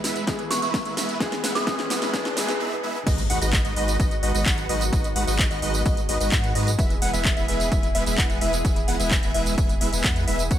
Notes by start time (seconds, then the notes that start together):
Already playing: E3 G#3 B3 G#4 B4 E5 B5, riser
0.04 G#3 B3 E4 B4 E5, snare, open hi-hat, tambourine
0.16 closed hi-hat, tambourine
0.26 E3 G#3 B3 E4 G#4 E5, kick, snare, closed hi-hat, tambourine
0.39 closed hi-hat, tambourine
0.51 G#3 B3 E4 B4 F#5 C#6, snare, open hi-hat, tambourine
0.62 G#3 B3 E4 B4 E5 C#6, closed hi-hat, tambourine
0.74 kick, snare, closed hi-hat, tambourine
0.85 G#3 B3 E4 B4 E5, closed hi-hat, tambourine
0.97 G#3 B3 E4 B4 E5, snare, open hi-hat, tambourine
1.09 closed hi-hat, tambourine
1.19 E3 G#3 B3 G#4 B4, kick, snare, closed hi-hat, tambourine
1.32 snare, closed hi-hat, tambourine
1.44 G#3 B3 E4 B4 F#5, snare, open hi-hat, tambourine
1.55 G#3 B3 E4 B4 E5 D#6, snare, closed hi-hat, tambourine
1.66 E3 G#3 B3 G#4, kick, snare, closed hi-hat, tambourine
1.79 snare, closed hi-hat, tambourine
1.90 G#3 B3 E4 B4 F#5, snare, open hi-hat, tambourine
2.02 G#3 B3 E4 B4 E5, snare, closed hi-hat, tambourine
2.12 E3 G#3 B3 E4 G#4, kick, snare, closed hi-hat, tambourine
2.25 snare, closed hi-hat, tambourine
2.36 E3 G#3 B3 E4 G#4 B4 E5, snare, open hi-hat, tambourine
2.48 snare, closed hi-hat, tambourine
2.60 G#3 B3 E4 B4 E5
2.83 G#3 B3 E4 B4 E5
3.06 G#1 D#3 F#3 G#3 B3 D#4 F#4 B4 D#5, kick, closed hi-hat, crash, tambourine, impact
3.18 closed hi-hat, tambourine
3.30 G#1 G#3 D#4 F#4 B4 F#5, open hi-hat
3.41 G#1 G#3 D#4 F#4 B4 D#5, closed hi-hat, tambourine
3.53 kick, clap, closed hi-hat, tambourine
3.65 G#1 G#3 D#4 F#4 B4 D#5, closed hi-hat, tambourine
3.76 G#1 G#3 D#4 F#4 B4 D#5, open hi-hat
3.88 closed hi-hat, tambourine
4.00 G#1 G#3 D#4 B4 D#5, kick, closed hi-hat, tambourine
4.11 closed hi-hat, tambourine
4.23 G#1 G#3 D#4 F#4 B4 D#5, open hi-hat
4.34 G#1 G#3 D#4 F#4 B4 D#5, closed hi-hat, tambourine
4.46 G#1 G#3 B4 F#5, kick, clap, closed hi-hat, tambourine
4.58 closed hi-hat, tambourine
4.69 G#1 G#3 D#4 F#4 B4 D#5, open hi-hat
4.81 closed hi-hat, tambourine
4.92 G#1 G#3 D#4 F#4 B4 D#5, kick, closed hi-hat, tambourine
5.04 closed hi-hat, tambourine
5.16 G#1 G#3 D#4 F#4 B4 F#5, open hi-hat
5.27 G#1 G#3 D#4 F#4 B4 D#5, closed hi-hat, tambourine
5.39 kick, clap, closed hi-hat, tambourine
5.51 G#1 G#3 D#4 F#4 B4 D#5, closed hi-hat, tambourine
5.62 G#1 G#3 D#4 F#4 B4 D#5, open hi-hat
5.74 closed hi-hat, tambourine
5.86 G#1 G#3 D#5, kick, closed hi-hat, tambourine
5.97 closed hi-hat, tambourine
6.09 G#1 G#3 D#4 F#4 B4 D#5, open hi-hat
6.20 G#1 G#3 D#4 F#4 B4 D#5, closed hi-hat, tambourine
6.32 G#2 G#3 B4 F#5, kick, clap, closed hi-hat, tambourine
6.44 closed hi-hat, tambourine
6.55 G#2 G#3 D#4 F#4 B4 D#5, open hi-hat
6.67 closed hi-hat, tambourine
6.79 E1 B2 E3 G#3 B3 E4 G#4 B4 E5, kick, closed hi-hat, tambourine
6.90 closed hi-hat, tambourine
7.02 E1 G#3 B3 E4 B4 F#5, open hi-hat
7.13 E1 G#3 B3 E4 B4 E5, closed hi-hat, tambourine
7.25 kick, clap, closed hi-hat, tambourine
7.37 E1 G#3 B3 E4 B4 E5, closed hi-hat, tambourine
7.48 E1 G#3 B3 E4 B4 E5, open hi-hat
7.60 closed hi-hat, tambourine
7.72 E1 G#3 E5, kick, closed hi-hat, tambourine
7.83 closed hi-hat, tambourine
7.95 E1 G#3 B3 E4 B4 E5, open hi-hat
8.06 E1 G#3 B3 E4 B4 E5, closed hi-hat, tambourine
8.18 E1 F#5, kick, clap, closed hi-hat, tambourine
8.30 closed hi-hat, tambourine
8.41 E1 G#3 B3 E4 B4 E5, open hi-hat
8.53 closed hi-hat, tambourine
8.65 E1 G#3 B3 E4 B4 E5, kick, closed hi-hat, tambourine
8.76 closed hi-hat, tambourine
8.88 E1 G#3 B3 E4 B4 F#5, open hi-hat
9.00 E1 G#3 B3 E4 B4 E5, closed hi-hat, tambourine
9.11 kick, clap, closed hi-hat, tambourine
9.23 E1 G#3 B3 E4 B4 E5, closed hi-hat, tambourine
9.34 E1 G#3 B3 E4 B4 E5, open hi-hat
9.46 closed hi-hat, tambourine
9.58 E1 B3 E4 B4 E5, kick, closed hi-hat, tambourine
9.69 closed hi-hat, tambourine
9.81 E1 G#3 B3 E4 B4 E5, open hi-hat
9.93 E1 G#3 B3 E4 B4 E5, closed hi-hat, tambourine
10.04 E2 G#3 B3 E4 B4 F#5, kick, clap, closed hi-hat, tambourine
10.16 closed hi-hat, tambourine
10.27 E1 G#3 B3 E4 B4 E5, open hi-hat
10.39 closed hi-hat, tambourine
10.51 F#1 A#2 C#3 F#3 A#3 C#4 F#4 C#5 F#5, kick, closed hi-hat, tambourine